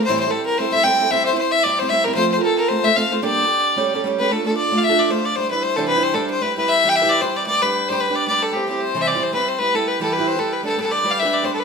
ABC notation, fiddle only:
X:1
M:4/4
L:1/16
Q:"Swing" 1/4=226
K:Aphr
V:1 name="Fiddle"
c2 c2 A2 B2 c2 e2 g4 | e2 c2 c2 e2 d2 c2 e2 B2 | c2 c3/2 B/2 A2 B2 c2 e2 f2 c2 | d12 z2 =B2 |
[K:Ddor] A2 A2 d3 f e2 d2 c2 d2 | c2 B2 c2 A2 B2 c2 A2 c2 | B2 B2 e3 g e2 d2 c2 d2 | d2 B4 c2 B2 d2 d2 A2 |
G2 G2 c3 e d2 c2 B2 c2 | B2 A2 B2 A2 B2 c2 A2 B2 | A2 A2 d3 f e2 d2 c3/2 A/2 B2 |]